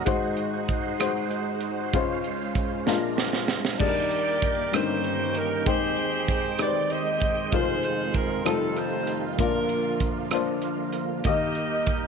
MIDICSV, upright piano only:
0, 0, Header, 1, 2, 480
1, 0, Start_track
1, 0, Tempo, 621118
1, 55, Time_signature, 6, 3, 24, 8
1, 9328, End_track
2, 0, Start_track
2, 0, Title_t, "Upright piano"
2, 0, Program_c, 0, 0
2, 0, Control_c, 0, 64, 127
2, 41, Note_on_c, 0, 56, 77
2, 48, Note_on_c, 0, 44, 60
2, 48, Note_on_c, 0, 63, 67
2, 49, Note_on_c, 0, 32, 58
2, 51, Note_on_c, 0, 66, 69
2, 55, Note_on_c, 0, 72, 83
2, 64, Control_c, 0, 64, 0
2, 220, Control_c, 0, 64, 127
2, 700, Note_off_c, 0, 56, 0
2, 703, Note_off_c, 0, 63, 0
2, 705, Note_off_c, 0, 66, 0
2, 707, Note_off_c, 0, 72, 0
2, 769, Note_on_c, 0, 56, 67
2, 774, Note_on_c, 0, 63, 62
2, 776, Note_on_c, 0, 66, 64
2, 781, Note_on_c, 0, 72, 77
2, 1425, Note_off_c, 0, 56, 0
2, 1427, Note_off_c, 0, 63, 0
2, 1428, Note_off_c, 0, 66, 0
2, 1430, Note_off_c, 0, 72, 0
2, 1465, Note_off_c, 0, 32, 0
2, 1465, Note_off_c, 0, 44, 0
2, 1498, Note_on_c, 0, 56, 75
2, 1502, Note_on_c, 0, 49, 59
2, 1502, Note_on_c, 0, 61, 68
2, 1502, Note_on_c, 0, 65, 68
2, 1503, Note_on_c, 0, 37, 58
2, 1509, Control_c, 0, 64, 0
2, 1509, Note_on_c, 0, 72, 78
2, 1645, Control_c, 0, 64, 127
2, 2149, Note_off_c, 0, 56, 0
2, 2151, Note_off_c, 0, 65, 0
2, 2152, Note_off_c, 0, 61, 0
2, 2155, Note_off_c, 0, 72, 0
2, 2191, Note_off_c, 0, 37, 0
2, 2191, Note_off_c, 0, 49, 0
2, 2211, Note_on_c, 0, 56, 64
2, 2216, Note_on_c, 0, 46, 64
2, 2218, Note_on_c, 0, 34, 64
2, 2218, Note_on_c, 0, 62, 59
2, 2223, Note_on_c, 0, 70, 73
2, 2224, Note_on_c, 0, 65, 60
2, 2229, Control_c, 0, 64, 0
2, 2385, Control_c, 0, 64, 127
2, 2866, Note_off_c, 0, 56, 0
2, 2869, Note_off_c, 0, 62, 0
2, 2872, Note_off_c, 0, 65, 0
2, 2872, Note_off_c, 0, 70, 0
2, 2908, Note_off_c, 0, 46, 0
2, 2909, Note_off_c, 0, 34, 0
2, 2927, Note_on_c, 0, 55, 56
2, 2935, Note_on_c, 0, 62, 54
2, 2937, Note_on_c, 0, 39, 47
2, 2937, Note_on_c, 0, 63, 58
2, 2938, Note_on_c, 0, 51, 50
2, 2943, Note_on_c, 0, 68, 53
2, 2951, Control_c, 0, 64, 0
2, 2992, Note_off_c, 0, 68, 0
2, 2995, Note_on_c, 0, 70, 67
2, 3091, Control_c, 0, 64, 127
2, 3583, Note_off_c, 0, 55, 0
2, 3588, Note_off_c, 0, 62, 0
2, 3589, Note_off_c, 0, 63, 0
2, 3618, Note_off_c, 0, 70, 0
2, 3628, Note_off_c, 0, 39, 0
2, 3628, Note_off_c, 0, 51, 0
2, 3650, Note_on_c, 0, 55, 59
2, 3657, Note_on_c, 0, 61, 53
2, 3659, Note_on_c, 0, 31, 56
2, 3659, Note_on_c, 0, 43, 50
2, 3661, Note_on_c, 0, 63, 53
2, 3664, Note_on_c, 0, 70, 63
2, 3672, Control_c, 0, 64, 0
2, 3828, Control_c, 0, 64, 127
2, 4305, Note_off_c, 0, 55, 0
2, 4308, Note_off_c, 0, 61, 0
2, 4310, Note_off_c, 0, 63, 0
2, 4312, Note_off_c, 0, 70, 0
2, 4348, Note_off_c, 0, 31, 0
2, 4349, Note_off_c, 0, 43, 0
2, 4373, Note_on_c, 0, 56, 64
2, 4374, Note_on_c, 0, 63, 55
2, 4379, Note_on_c, 0, 39, 51
2, 4380, Note_on_c, 0, 51, 47
2, 4381, Note_on_c, 0, 79, 54
2, 4385, Note_on_c, 0, 72, 70
2, 4388, Control_c, 0, 64, 0
2, 4530, Control_c, 0, 64, 127
2, 5026, Note_off_c, 0, 56, 0
2, 5026, Note_off_c, 0, 63, 0
2, 5030, Note_off_c, 0, 79, 0
2, 5032, Note_off_c, 0, 72, 0
2, 5087, Note_on_c, 0, 56, 54
2, 5093, Note_on_c, 0, 63, 49
2, 5096, Note_on_c, 0, 67, 52
2, 5103, Note_on_c, 0, 71, 49
2, 5151, Note_off_c, 0, 71, 0
2, 5152, Note_on_c, 0, 72, 65
2, 5742, Note_off_c, 0, 56, 0
2, 5745, Note_off_c, 0, 63, 0
2, 5747, Note_off_c, 0, 67, 0
2, 5775, Note_off_c, 0, 72, 0
2, 5787, Note_off_c, 0, 39, 0
2, 5787, Note_off_c, 0, 51, 0
2, 5809, Note_on_c, 0, 56, 63
2, 5816, Note_on_c, 0, 29, 53
2, 5816, Note_on_c, 0, 63, 60
2, 5817, Note_on_c, 0, 41, 51
2, 5820, Note_on_c, 0, 65, 57
2, 5826, Note_on_c, 0, 70, 60
2, 5828, Control_c, 0, 64, 0
2, 5872, Note_off_c, 0, 70, 0
2, 5873, Note_on_c, 0, 72, 73
2, 5986, Control_c, 0, 64, 127
2, 6463, Note_off_c, 0, 56, 0
2, 6466, Note_off_c, 0, 63, 0
2, 6468, Note_off_c, 0, 65, 0
2, 6495, Note_off_c, 0, 72, 0
2, 6506, Note_off_c, 0, 29, 0
2, 6506, Note_off_c, 0, 41, 0
2, 6527, Note_on_c, 0, 55, 61
2, 6527, Note_on_c, 0, 63, 50
2, 6532, Note_on_c, 0, 29, 56
2, 6534, Note_on_c, 0, 41, 56
2, 6535, Note_on_c, 0, 65, 54
2, 6538, Note_on_c, 0, 69, 66
2, 6547, Control_c, 0, 64, 0
2, 6662, Control_c, 0, 64, 127
2, 7181, Note_off_c, 0, 55, 0
2, 7181, Note_off_c, 0, 63, 0
2, 7185, Note_off_c, 0, 65, 0
2, 7187, Note_off_c, 0, 69, 0
2, 7223, Note_off_c, 0, 29, 0
2, 7224, Note_off_c, 0, 41, 0
2, 7256, Note_on_c, 0, 58, 62
2, 7258, Note_on_c, 0, 62, 55
2, 7259, Note_on_c, 0, 46, 49
2, 7260, Note_on_c, 0, 34, 51
2, 7263, Note_on_c, 0, 65, 58
2, 7267, Control_c, 0, 64, 0
2, 7269, Note_on_c, 0, 74, 68
2, 7419, Control_c, 0, 64, 127
2, 7905, Note_off_c, 0, 58, 0
2, 7907, Note_off_c, 0, 62, 0
2, 7909, Note_off_c, 0, 65, 0
2, 7912, Note_off_c, 0, 74, 0
2, 7974, Note_on_c, 0, 58, 63
2, 7977, Note_on_c, 0, 62, 64
2, 7981, Note_on_c, 0, 65, 60
2, 7987, Note_on_c, 0, 72, 73
2, 8624, Note_off_c, 0, 58, 0
2, 8626, Note_off_c, 0, 62, 0
2, 8628, Note_off_c, 0, 65, 0
2, 8631, Note_off_c, 0, 72, 0
2, 8666, Note_off_c, 0, 46, 0
2, 8667, Note_off_c, 0, 34, 0
2, 8691, Note_on_c, 0, 58, 64
2, 8696, Note_on_c, 0, 51, 53
2, 8696, Note_on_c, 0, 63, 59
2, 8699, Note_on_c, 0, 39, 49
2, 8701, Note_on_c, 0, 67, 55
2, 8702, Note_on_c, 0, 75, 67
2, 8706, Control_c, 0, 64, 0
2, 8830, Control_c, 0, 64, 127
2, 9328, Note_off_c, 0, 39, 0
2, 9328, Note_off_c, 0, 51, 0
2, 9328, Note_off_c, 0, 58, 0
2, 9328, Note_off_c, 0, 63, 0
2, 9328, Note_off_c, 0, 67, 0
2, 9328, Note_off_c, 0, 75, 0
2, 9328, End_track
0, 0, End_of_file